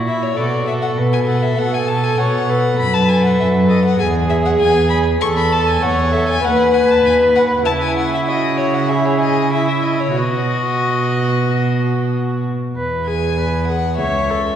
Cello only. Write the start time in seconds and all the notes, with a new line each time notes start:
Already playing: A#2
0.38 B2
0.98 B2
1.58 B2
2.19 B2
2.79 F#2
3.39 F#2
3.99 E2
4.60 E2
5.21 E2
5.82 E2
6.43 D#2
7.05 D#2
7.66 C#3
10.17 B2
12.75 E2
13.98 C#2